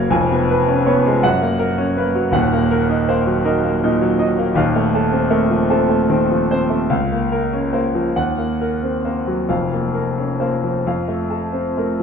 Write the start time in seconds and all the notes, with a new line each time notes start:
Already playing: C#3 F#3 A#3 C#4 A#4 B4 C#5
0.10 F1 F2 G#5
0.31 B3
0.50 B4
0.68 C#4
0.86 B3 C#5
1.06 G#3
1.23 F#2 F#5
1.42 A#3
1.59 A#4
1.78 C#4
1.97 A#3 B4
2.15 F#3
2.31 D#1 D#2 F#5
2.53 A#3
2.71 A#4
2.89 D#4
3.08 A#3 C5
3.27 F#3
3.45 D#4 A#4
3.64 A#3
3.83 A#2 D#4
4.01 F#3
4.19 D#4 D#5
4.38 A#3
4.54 D#1 D#2 F5
4.76 A3
4.94 A4
5.12 C4
5.30 A3 A#4
5.50 F3
5.70 C4 A4
5.89 A3
6.09 D#3 C4
6.31 F3
6.51 C4 C5
6.70 A3
6.90 C#2 F5
7.12 A#3
7.32 A#4
7.53 C#4
7.73 A#3 C5
7.95 F3
8.16 D#2 F#5
8.38 A#3
8.61 A#4
8.83 C4
9.05 A#3 C5
9.28 F#3
9.49 F1 F2 F5
9.72 A#3
9.94 A#4
10.18 C#4
10.40 A#3 C5
10.64 F3
10.87 F2 F5
11.08 A3
11.30 A4
11.53 C4
11.77 A3 A#4
12.00 F3